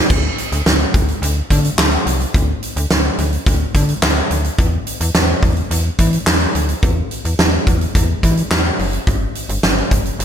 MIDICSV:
0, 0, Header, 1, 3, 480
1, 0, Start_track
1, 0, Key_signature, 1, "minor"
1, 0, Tempo, 560748
1, 86, Time_signature, 4, 2, 24, 8
1, 8771, End_track
2, 0, Start_track
2, 0, Title_t, "FM bass"
2, 0, Program_c, 0, 39
2, 86, Note_on_c, 0, 38, 109
2, 254, Note_off_c, 0, 38, 0
2, 446, Note_on_c, 0, 38, 104
2, 530, Note_off_c, 0, 38, 0
2, 566, Note_on_c, 0, 38, 103
2, 734, Note_off_c, 0, 38, 0
2, 807, Note_on_c, 0, 38, 97
2, 974, Note_off_c, 0, 38, 0
2, 1045, Note_on_c, 0, 38, 111
2, 1213, Note_off_c, 0, 38, 0
2, 1288, Note_on_c, 0, 50, 105
2, 1455, Note_off_c, 0, 50, 0
2, 1525, Note_on_c, 0, 38, 109
2, 1694, Note_off_c, 0, 38, 0
2, 1764, Note_on_c, 0, 36, 98
2, 1933, Note_off_c, 0, 36, 0
2, 2007, Note_on_c, 0, 38, 115
2, 2175, Note_off_c, 0, 38, 0
2, 2366, Note_on_c, 0, 38, 102
2, 2450, Note_off_c, 0, 38, 0
2, 2487, Note_on_c, 0, 38, 94
2, 2655, Note_off_c, 0, 38, 0
2, 2726, Note_on_c, 0, 38, 105
2, 2894, Note_off_c, 0, 38, 0
2, 2966, Note_on_c, 0, 38, 107
2, 3134, Note_off_c, 0, 38, 0
2, 3207, Note_on_c, 0, 50, 101
2, 3374, Note_off_c, 0, 50, 0
2, 3444, Note_on_c, 0, 38, 103
2, 3613, Note_off_c, 0, 38, 0
2, 3685, Note_on_c, 0, 38, 97
2, 3853, Note_off_c, 0, 38, 0
2, 3925, Note_on_c, 0, 40, 107
2, 4093, Note_off_c, 0, 40, 0
2, 4285, Note_on_c, 0, 40, 107
2, 4369, Note_off_c, 0, 40, 0
2, 4405, Note_on_c, 0, 40, 108
2, 4574, Note_off_c, 0, 40, 0
2, 4645, Note_on_c, 0, 40, 96
2, 4814, Note_off_c, 0, 40, 0
2, 4886, Note_on_c, 0, 40, 106
2, 5054, Note_off_c, 0, 40, 0
2, 5126, Note_on_c, 0, 52, 97
2, 5294, Note_off_c, 0, 52, 0
2, 5365, Note_on_c, 0, 40, 101
2, 5533, Note_off_c, 0, 40, 0
2, 5605, Note_on_c, 0, 38, 92
2, 5774, Note_off_c, 0, 38, 0
2, 5845, Note_on_c, 0, 40, 111
2, 6013, Note_off_c, 0, 40, 0
2, 6206, Note_on_c, 0, 40, 91
2, 6290, Note_off_c, 0, 40, 0
2, 6325, Note_on_c, 0, 40, 100
2, 6493, Note_off_c, 0, 40, 0
2, 6565, Note_on_c, 0, 40, 104
2, 6734, Note_off_c, 0, 40, 0
2, 6806, Note_on_c, 0, 40, 110
2, 6974, Note_off_c, 0, 40, 0
2, 7047, Note_on_c, 0, 52, 98
2, 7215, Note_off_c, 0, 52, 0
2, 7285, Note_on_c, 0, 40, 104
2, 7454, Note_off_c, 0, 40, 0
2, 7525, Note_on_c, 0, 30, 102
2, 7693, Note_off_c, 0, 30, 0
2, 7765, Note_on_c, 0, 31, 109
2, 7934, Note_off_c, 0, 31, 0
2, 8125, Note_on_c, 0, 31, 98
2, 8209, Note_off_c, 0, 31, 0
2, 8246, Note_on_c, 0, 31, 102
2, 8414, Note_off_c, 0, 31, 0
2, 8486, Note_on_c, 0, 31, 99
2, 8654, Note_off_c, 0, 31, 0
2, 8726, Note_on_c, 0, 31, 111
2, 8771, Note_off_c, 0, 31, 0
2, 8771, End_track
3, 0, Start_track
3, 0, Title_t, "Drums"
3, 86, Note_on_c, 9, 36, 115
3, 86, Note_on_c, 9, 49, 95
3, 172, Note_off_c, 9, 36, 0
3, 172, Note_off_c, 9, 49, 0
3, 326, Note_on_c, 9, 42, 64
3, 412, Note_off_c, 9, 42, 0
3, 446, Note_on_c, 9, 42, 59
3, 532, Note_off_c, 9, 42, 0
3, 566, Note_on_c, 9, 42, 71
3, 567, Note_on_c, 9, 38, 108
3, 652, Note_off_c, 9, 42, 0
3, 653, Note_off_c, 9, 38, 0
3, 807, Note_on_c, 9, 36, 90
3, 807, Note_on_c, 9, 42, 69
3, 892, Note_off_c, 9, 36, 0
3, 892, Note_off_c, 9, 42, 0
3, 928, Note_on_c, 9, 42, 44
3, 1013, Note_off_c, 9, 42, 0
3, 1050, Note_on_c, 9, 42, 95
3, 1135, Note_off_c, 9, 42, 0
3, 1288, Note_on_c, 9, 36, 84
3, 1289, Note_on_c, 9, 42, 88
3, 1374, Note_off_c, 9, 36, 0
3, 1375, Note_off_c, 9, 42, 0
3, 1408, Note_on_c, 9, 42, 52
3, 1493, Note_off_c, 9, 42, 0
3, 1528, Note_on_c, 9, 38, 119
3, 1528, Note_on_c, 9, 39, 98
3, 1528, Note_on_c, 9, 42, 80
3, 1614, Note_off_c, 9, 38, 0
3, 1614, Note_off_c, 9, 39, 0
3, 1614, Note_off_c, 9, 42, 0
3, 1768, Note_on_c, 9, 42, 73
3, 1854, Note_off_c, 9, 42, 0
3, 1886, Note_on_c, 9, 42, 45
3, 1972, Note_off_c, 9, 42, 0
3, 2007, Note_on_c, 9, 36, 113
3, 2008, Note_on_c, 9, 42, 72
3, 2092, Note_off_c, 9, 36, 0
3, 2093, Note_off_c, 9, 42, 0
3, 2247, Note_on_c, 9, 42, 66
3, 2333, Note_off_c, 9, 42, 0
3, 2367, Note_on_c, 9, 42, 61
3, 2452, Note_off_c, 9, 42, 0
3, 2486, Note_on_c, 9, 42, 71
3, 2487, Note_on_c, 9, 38, 116
3, 2572, Note_off_c, 9, 38, 0
3, 2572, Note_off_c, 9, 42, 0
3, 2726, Note_on_c, 9, 42, 70
3, 2811, Note_off_c, 9, 42, 0
3, 2847, Note_on_c, 9, 42, 44
3, 2932, Note_off_c, 9, 42, 0
3, 2966, Note_on_c, 9, 36, 99
3, 2968, Note_on_c, 9, 42, 93
3, 3051, Note_off_c, 9, 36, 0
3, 3053, Note_off_c, 9, 42, 0
3, 3207, Note_on_c, 9, 36, 83
3, 3207, Note_on_c, 9, 42, 85
3, 3292, Note_off_c, 9, 36, 0
3, 3292, Note_off_c, 9, 42, 0
3, 3326, Note_on_c, 9, 42, 52
3, 3412, Note_off_c, 9, 42, 0
3, 3446, Note_on_c, 9, 38, 122
3, 3446, Note_on_c, 9, 39, 95
3, 3446, Note_on_c, 9, 42, 78
3, 3531, Note_off_c, 9, 38, 0
3, 3531, Note_off_c, 9, 39, 0
3, 3532, Note_off_c, 9, 42, 0
3, 3686, Note_on_c, 9, 42, 70
3, 3771, Note_off_c, 9, 42, 0
3, 3804, Note_on_c, 9, 42, 46
3, 3889, Note_off_c, 9, 42, 0
3, 3924, Note_on_c, 9, 42, 73
3, 3925, Note_on_c, 9, 36, 112
3, 4010, Note_off_c, 9, 42, 0
3, 4011, Note_off_c, 9, 36, 0
3, 4165, Note_on_c, 9, 42, 65
3, 4250, Note_off_c, 9, 42, 0
3, 4285, Note_on_c, 9, 42, 63
3, 4370, Note_off_c, 9, 42, 0
3, 4404, Note_on_c, 9, 42, 73
3, 4405, Note_on_c, 9, 38, 114
3, 4490, Note_off_c, 9, 42, 0
3, 4491, Note_off_c, 9, 38, 0
3, 4644, Note_on_c, 9, 46, 49
3, 4645, Note_on_c, 9, 36, 92
3, 4730, Note_off_c, 9, 36, 0
3, 4730, Note_off_c, 9, 46, 0
3, 4765, Note_on_c, 9, 42, 46
3, 4850, Note_off_c, 9, 42, 0
3, 4887, Note_on_c, 9, 42, 92
3, 4972, Note_off_c, 9, 42, 0
3, 5125, Note_on_c, 9, 42, 85
3, 5126, Note_on_c, 9, 36, 83
3, 5211, Note_off_c, 9, 36, 0
3, 5211, Note_off_c, 9, 42, 0
3, 5245, Note_on_c, 9, 42, 53
3, 5330, Note_off_c, 9, 42, 0
3, 5365, Note_on_c, 9, 38, 119
3, 5365, Note_on_c, 9, 39, 97
3, 5365, Note_on_c, 9, 42, 76
3, 5451, Note_off_c, 9, 38, 0
3, 5451, Note_off_c, 9, 39, 0
3, 5451, Note_off_c, 9, 42, 0
3, 5605, Note_on_c, 9, 42, 72
3, 5691, Note_off_c, 9, 42, 0
3, 5723, Note_on_c, 9, 42, 47
3, 5809, Note_off_c, 9, 42, 0
3, 5845, Note_on_c, 9, 36, 113
3, 5845, Note_on_c, 9, 42, 76
3, 5931, Note_off_c, 9, 36, 0
3, 5931, Note_off_c, 9, 42, 0
3, 6085, Note_on_c, 9, 42, 64
3, 6171, Note_off_c, 9, 42, 0
3, 6205, Note_on_c, 9, 42, 58
3, 6290, Note_off_c, 9, 42, 0
3, 6325, Note_on_c, 9, 42, 73
3, 6326, Note_on_c, 9, 38, 112
3, 6410, Note_off_c, 9, 42, 0
3, 6411, Note_off_c, 9, 38, 0
3, 6565, Note_on_c, 9, 36, 93
3, 6565, Note_on_c, 9, 42, 66
3, 6651, Note_off_c, 9, 36, 0
3, 6651, Note_off_c, 9, 42, 0
3, 6686, Note_on_c, 9, 42, 45
3, 6772, Note_off_c, 9, 42, 0
3, 6806, Note_on_c, 9, 36, 98
3, 6808, Note_on_c, 9, 42, 91
3, 6891, Note_off_c, 9, 36, 0
3, 6894, Note_off_c, 9, 42, 0
3, 7047, Note_on_c, 9, 36, 81
3, 7048, Note_on_c, 9, 42, 86
3, 7132, Note_off_c, 9, 36, 0
3, 7133, Note_off_c, 9, 42, 0
3, 7167, Note_on_c, 9, 42, 53
3, 7252, Note_off_c, 9, 42, 0
3, 7286, Note_on_c, 9, 38, 116
3, 7286, Note_on_c, 9, 39, 95
3, 7286, Note_on_c, 9, 42, 78
3, 7372, Note_off_c, 9, 38, 0
3, 7372, Note_off_c, 9, 39, 0
3, 7372, Note_off_c, 9, 42, 0
3, 7526, Note_on_c, 9, 46, 73
3, 7611, Note_off_c, 9, 46, 0
3, 7643, Note_on_c, 9, 42, 45
3, 7729, Note_off_c, 9, 42, 0
3, 7764, Note_on_c, 9, 42, 73
3, 7765, Note_on_c, 9, 36, 114
3, 7850, Note_off_c, 9, 42, 0
3, 7851, Note_off_c, 9, 36, 0
3, 8005, Note_on_c, 9, 42, 63
3, 8091, Note_off_c, 9, 42, 0
3, 8125, Note_on_c, 9, 42, 60
3, 8211, Note_off_c, 9, 42, 0
3, 8245, Note_on_c, 9, 42, 72
3, 8246, Note_on_c, 9, 38, 112
3, 8331, Note_off_c, 9, 42, 0
3, 8332, Note_off_c, 9, 38, 0
3, 8485, Note_on_c, 9, 42, 69
3, 8486, Note_on_c, 9, 36, 94
3, 8571, Note_off_c, 9, 42, 0
3, 8572, Note_off_c, 9, 36, 0
3, 8607, Note_on_c, 9, 42, 45
3, 8692, Note_off_c, 9, 42, 0
3, 8729, Note_on_c, 9, 42, 90
3, 8771, Note_off_c, 9, 42, 0
3, 8771, End_track
0, 0, End_of_file